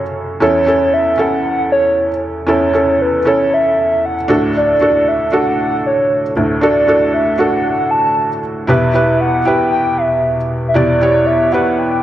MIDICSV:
0, 0, Header, 1, 3, 480
1, 0, Start_track
1, 0, Key_signature, 2, "major"
1, 0, Tempo, 516974
1, 386, Time_signature, 4, 2, 24, 8
1, 11168, End_track
2, 0, Start_track
2, 0, Title_t, "Soft synth lead"
2, 0, Program_c, 0, 80
2, 0, Note_on_c, 0, 73, 94
2, 154, Note_off_c, 0, 73, 0
2, 386, Note_on_c, 0, 73, 103
2, 868, Note_on_c, 0, 76, 107
2, 882, Note_off_c, 0, 73, 0
2, 1118, Note_on_c, 0, 78, 108
2, 1132, Note_off_c, 0, 76, 0
2, 1352, Note_off_c, 0, 78, 0
2, 1356, Note_on_c, 0, 78, 111
2, 1575, Note_off_c, 0, 78, 0
2, 1598, Note_on_c, 0, 73, 87
2, 2039, Note_off_c, 0, 73, 0
2, 2317, Note_on_c, 0, 73, 100
2, 2802, Note_on_c, 0, 71, 94
2, 2816, Note_off_c, 0, 73, 0
2, 3043, Note_on_c, 0, 73, 91
2, 3057, Note_off_c, 0, 71, 0
2, 3284, Note_on_c, 0, 76, 105
2, 3298, Note_off_c, 0, 73, 0
2, 3515, Note_off_c, 0, 76, 0
2, 3523, Note_on_c, 0, 76, 102
2, 3764, Note_on_c, 0, 78, 106
2, 3778, Note_off_c, 0, 76, 0
2, 4115, Note_off_c, 0, 78, 0
2, 4242, Note_on_c, 0, 74, 110
2, 4720, Note_on_c, 0, 76, 97
2, 4733, Note_off_c, 0, 74, 0
2, 4953, Note_off_c, 0, 76, 0
2, 4958, Note_on_c, 0, 78, 98
2, 5176, Note_off_c, 0, 78, 0
2, 5201, Note_on_c, 0, 78, 110
2, 5417, Note_off_c, 0, 78, 0
2, 5445, Note_on_c, 0, 73, 85
2, 5883, Note_off_c, 0, 73, 0
2, 6156, Note_on_c, 0, 74, 95
2, 6598, Note_off_c, 0, 74, 0
2, 6629, Note_on_c, 0, 76, 88
2, 6866, Note_on_c, 0, 78, 99
2, 6880, Note_off_c, 0, 76, 0
2, 7102, Note_off_c, 0, 78, 0
2, 7108, Note_on_c, 0, 78, 103
2, 7342, Note_on_c, 0, 81, 107
2, 7356, Note_off_c, 0, 78, 0
2, 7824, Note_off_c, 0, 81, 0
2, 8082, Note_on_c, 0, 76, 98
2, 8521, Note_off_c, 0, 76, 0
2, 8551, Note_on_c, 0, 78, 99
2, 8788, Note_on_c, 0, 79, 104
2, 8802, Note_off_c, 0, 78, 0
2, 9017, Note_off_c, 0, 79, 0
2, 9022, Note_on_c, 0, 79, 118
2, 9262, Note_on_c, 0, 76, 95
2, 9276, Note_off_c, 0, 79, 0
2, 9744, Note_off_c, 0, 76, 0
2, 9919, Note_on_c, 0, 76, 72
2, 9985, Note_on_c, 0, 74, 91
2, 9999, Note_off_c, 0, 76, 0
2, 10459, Note_on_c, 0, 76, 96
2, 10473, Note_off_c, 0, 74, 0
2, 10699, Note_on_c, 0, 78, 98
2, 10713, Note_off_c, 0, 76, 0
2, 10942, Note_on_c, 0, 79, 114
2, 10956, Note_off_c, 0, 78, 0
2, 11168, Note_off_c, 0, 79, 0
2, 11168, End_track
3, 0, Start_track
3, 0, Title_t, "Felt piano"
3, 0, Program_c, 1, 0
3, 0, Control_c, 1, 64, 127
3, 0, Note_on_c, 1, 42, 70
3, 0, Note_on_c, 1, 49, 62
3, 0, Note_on_c, 1, 61, 74
3, 0, Note_on_c, 1, 66, 62
3, 0, Note_on_c, 1, 69, 80
3, 349, Note_off_c, 1, 42, 0
3, 349, Note_off_c, 1, 49, 0
3, 374, Note_off_c, 1, 61, 0
3, 374, Note_on_c, 1, 61, 75
3, 381, Note_on_c, 1, 40, 65
3, 383, Note_on_c, 1, 64, 70
3, 385, Note_on_c, 1, 52, 70
3, 390, Note_off_c, 1, 69, 0
3, 390, Note_on_c, 1, 69, 91
3, 398, Control_c, 1, 64, 0
3, 405, Note_off_c, 1, 66, 0
3, 565, Control_c, 1, 64, 127
3, 588, Note_off_c, 1, 61, 0
3, 592, Note_off_c, 1, 64, 0
3, 596, Note_off_c, 1, 69, 0
3, 616, Note_on_c, 1, 61, 69
3, 623, Note_on_c, 1, 64, 67
3, 633, Note_on_c, 1, 69, 84
3, 1037, Note_off_c, 1, 61, 0
3, 1041, Note_off_c, 1, 64, 0
3, 1046, Note_off_c, 1, 69, 0
3, 1091, Note_on_c, 1, 61, 75
3, 1101, Note_on_c, 1, 64, 67
3, 1107, Note_on_c, 1, 69, 78
3, 1931, Note_off_c, 1, 61, 0
3, 1935, Note_off_c, 1, 64, 0
3, 1939, Note_off_c, 1, 69, 0
3, 2267, Note_off_c, 1, 40, 0
3, 2268, Note_off_c, 1, 52, 0
3, 2289, Note_on_c, 1, 61, 79
3, 2300, Note_on_c, 1, 40, 71
3, 2300, Note_on_c, 1, 52, 67
3, 2301, Note_on_c, 1, 64, 72
3, 2308, Note_on_c, 1, 69, 81
3, 2506, Note_off_c, 1, 61, 0
3, 2512, Note_off_c, 1, 64, 0
3, 2515, Note_off_c, 1, 69, 0
3, 2537, Note_on_c, 1, 61, 71
3, 2545, Note_on_c, 1, 64, 62
3, 2551, Note_on_c, 1, 69, 82
3, 2958, Note_off_c, 1, 61, 0
3, 2962, Note_off_c, 1, 64, 0
3, 2965, Note_off_c, 1, 69, 0
3, 3020, Note_on_c, 1, 61, 72
3, 3026, Note_on_c, 1, 64, 65
3, 3035, Note_on_c, 1, 69, 86
3, 3855, Note_off_c, 1, 61, 0
3, 3858, Note_off_c, 1, 64, 0
3, 3862, Note_off_c, 1, 69, 0
3, 3946, Note_off_c, 1, 40, 0
3, 3946, Note_off_c, 1, 52, 0
3, 3975, Note_on_c, 1, 62, 82
3, 3984, Note_on_c, 1, 38, 61
3, 3984, Note_on_c, 1, 45, 64
3, 3984, Note_on_c, 1, 66, 75
3, 3993, Note_on_c, 1, 69, 85
3, 4000, Control_c, 1, 64, 0
3, 4177, Control_c, 1, 64, 127
3, 4397, Note_off_c, 1, 62, 0
3, 4401, Note_off_c, 1, 66, 0
3, 4406, Note_off_c, 1, 69, 0
3, 4461, Note_on_c, 1, 62, 72
3, 4468, Note_on_c, 1, 66, 70
3, 4477, Note_on_c, 1, 69, 78
3, 4879, Note_off_c, 1, 62, 0
3, 4883, Note_off_c, 1, 66, 0
3, 4888, Note_off_c, 1, 69, 0
3, 4938, Note_on_c, 1, 62, 69
3, 4947, Note_on_c, 1, 66, 68
3, 4953, Note_on_c, 1, 69, 83
3, 5774, Note_off_c, 1, 62, 0
3, 5778, Note_off_c, 1, 66, 0
3, 5782, Note_off_c, 1, 69, 0
3, 5868, Note_off_c, 1, 38, 0
3, 5868, Note_off_c, 1, 45, 0
3, 5909, Note_on_c, 1, 45, 67
3, 5911, Note_on_c, 1, 38, 70
3, 6139, Note_on_c, 1, 62, 82
3, 6151, Note_on_c, 1, 66, 70
3, 6157, Note_on_c, 1, 69, 91
3, 6351, Note_off_c, 1, 62, 0
3, 6356, Note_off_c, 1, 66, 0
3, 6360, Note_off_c, 1, 69, 0
3, 6377, Note_on_c, 1, 62, 71
3, 6387, Note_on_c, 1, 66, 66
3, 6395, Note_on_c, 1, 69, 84
3, 6798, Note_off_c, 1, 62, 0
3, 6803, Note_off_c, 1, 66, 0
3, 6807, Note_off_c, 1, 69, 0
3, 6852, Note_on_c, 1, 62, 72
3, 6860, Note_on_c, 1, 66, 69
3, 6870, Note_on_c, 1, 69, 82
3, 7691, Note_off_c, 1, 62, 0
3, 7695, Note_off_c, 1, 66, 0
3, 7700, Note_off_c, 1, 69, 0
3, 7791, Note_off_c, 1, 38, 0
3, 7791, Note_off_c, 1, 45, 0
3, 8053, Note_on_c, 1, 64, 84
3, 8062, Note_on_c, 1, 67, 74
3, 8063, Note_on_c, 1, 47, 67
3, 8064, Note_on_c, 1, 40, 71
3, 8073, Note_on_c, 1, 71, 88
3, 8076, Control_c, 1, 64, 0
3, 8253, Control_c, 1, 64, 127
3, 8268, Note_off_c, 1, 64, 0
3, 8272, Note_off_c, 1, 67, 0
3, 8278, Note_off_c, 1, 71, 0
3, 8297, Note_on_c, 1, 64, 75
3, 8303, Note_on_c, 1, 67, 70
3, 8312, Note_on_c, 1, 71, 85
3, 8717, Note_off_c, 1, 64, 0
3, 8721, Note_off_c, 1, 67, 0
3, 8725, Note_off_c, 1, 71, 0
3, 8777, Note_on_c, 1, 64, 82
3, 8786, Note_on_c, 1, 67, 66
3, 8796, Note_on_c, 1, 71, 82
3, 9613, Note_off_c, 1, 64, 0
3, 9618, Note_off_c, 1, 67, 0
3, 9623, Note_off_c, 1, 71, 0
3, 9948, Note_off_c, 1, 40, 0
3, 9948, Note_off_c, 1, 47, 0
3, 9974, Note_on_c, 1, 64, 81
3, 9983, Note_on_c, 1, 40, 67
3, 9983, Note_on_c, 1, 67, 73
3, 9986, Note_on_c, 1, 47, 63
3, 9992, Note_on_c, 1, 74, 83
3, 10188, Note_off_c, 1, 64, 0
3, 10193, Note_off_c, 1, 67, 0
3, 10197, Note_off_c, 1, 74, 0
3, 10222, Note_on_c, 1, 64, 75
3, 10227, Note_on_c, 1, 67, 64
3, 10239, Note_on_c, 1, 73, 85
3, 10640, Note_off_c, 1, 64, 0
3, 10643, Note_off_c, 1, 67, 0
3, 10649, Note_off_c, 1, 73, 0
3, 10700, Note_on_c, 1, 64, 75
3, 10709, Note_on_c, 1, 67, 65
3, 10718, Note_on_c, 1, 71, 85
3, 11168, Note_off_c, 1, 40, 0
3, 11168, Note_off_c, 1, 47, 0
3, 11168, Note_off_c, 1, 64, 0
3, 11168, Note_off_c, 1, 67, 0
3, 11168, Note_off_c, 1, 71, 0
3, 11168, End_track
0, 0, End_of_file